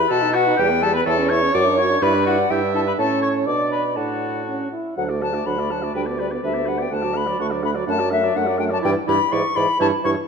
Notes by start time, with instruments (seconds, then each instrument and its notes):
Already playing: clarinet B4, flute B5
0.09 bassoon B2, french horn F#4, oboe A4, flute A5
0.23 french horn D#4
0.34 oboe F#4, french horn F#4, flute F#5
0.47 french horn D#4
0.57 bassoon E2, french horn G3, oboe G4, flute G5
0.71 french horn B3
0.82 french horn G3, oboe A4, flute A5
0.93 french horn B3, oboe B4, flute B5
1.05 bassoon E2, french horn E4, oboe A4, clarinet C#5, flute A5
1.19 french horn C#4
1.29 french horn E4, oboe C#5, flute C#6
1.43 french horn C#4
1.54 bassoon F#2, french horn F#4, oboe D5, flute D6
1.67 french horn D4
1.78 french horn F#4, oboe C#5, flute C#6
1.91 french horn D4
2.02 bassoon G2, french horn E4, oboe B4, clarinet D5, flute B5
2.15 french horn D4
2.26 french horn E4, oboe F#4, flute F#5
2.39 french horn D4
2.50 bassoon G2, french horn E4, oboe G4, clarinet E5, flute G5
2.63 french horn D4
2.75 french horn E4, oboe A4, flute A5
2.87 french horn D4, oboe B4, flute B5
2.99 bassoon A2, french horn C#4, oboe A4, clarinet C#5, flute A5
3.22 oboe C#5, flute C#6
3.46 bassoon B2, french horn D4, clarinet D5, oboe D5, flute D6
3.71 oboe B4, flute B5
3.96 bassoon A2, french horn D4, oboe F#4, flute F#5, clarinet A5
4.47 french horn C#4
4.73 french horn E4
4.97 bassoon D2, french horn F#3, clarinet D4, oboe F#5, flute F#5
5.09 french horn A3, clarinet F#4, oboe D5
5.21 french horn F#3, clarinet D4, oboe F#5, flute A5
5.34 french horn A3, clarinet F#4, oboe D5
5.46 bassoon D2, french horn F#3, clarinet D4, oboe F#5, flute B5
5.58 french horn A3, clarinet F#4, oboe D5
5.70 french horn F#3, clarinet D4, oboe F#5, flute A5
5.83 french horn A3, clarinet F#4, oboe D5
5.94 bassoon D2, french horn G3, clarinet D4, oboe B4, flute G5
6.06 french horn B3, clarinet G4, oboe D5
6.19 french horn G3, clarinet D4, oboe B4, flute D5
6.31 french horn B3, clarinet G4, oboe D5
6.42 bassoon D2, french horn G3, clarinet D4, oboe B4, flute E5
6.54 french horn B3, clarinet G4, oboe D5
6.66 french horn G3, clarinet D4, oboe B4, flute F#5
6.78 french horn B3, clarinet G4, oboe D5, flute G5
6.90 bassoon D2, french horn A3, clarinet D4, oboe F#5, flute A5
7.02 french horn F#3, clarinet F#4, oboe D5
7.14 french horn A3, clarinet D4, oboe F#5, flute B5
7.27 french horn F#3, clarinet F#4, oboe D5
7.39 bassoon D2, french horn A3, clarinet D4, oboe F#5, flute C#6
7.51 french horn F#3, clarinet F#4, oboe D5
7.62 french horn A3, clarinet D4, oboe F#5, flute B5
7.74 french horn F#3, clarinet F#4, oboe D5
7.86 bassoon F#2, french horn A3, clarinet D4, oboe F#5, flute A5
7.98 french horn F#3, clarinet F#4, oboe D5
8.10 french horn A3, clarinet D4, flute E5, oboe F#5
8.23 french horn F#3, clarinet F#4, oboe D5
8.34 bassoon F#2, french horn A3, clarinet D4, oboe F#5, flute F#5
8.46 french horn F#3, clarinet F#4, oboe D5
8.58 french horn A3, clarinet D4, oboe F#5, flute G5
8.70 french horn F#3, clarinet F#4, oboe D5, flute A5
8.82 bassoon G2, french horn E3, clarinet E4, oboe D5, flute G5
9.07 bassoon G2, french horn E3, clarinet E4, oboe D5, flute B5
9.31 bassoon G#2, french horn E3, clarinet E4, oboe D5, flute C#6
9.55 bassoon G#2, french horn E3, clarinet E4, oboe D5, flute B5
9.79 bassoon G2, french horn E3, clarinet E4, oboe C#5, flute A5
10.04 bassoon G2, french horn E3, clarinet E4, oboe C#5, flute C#6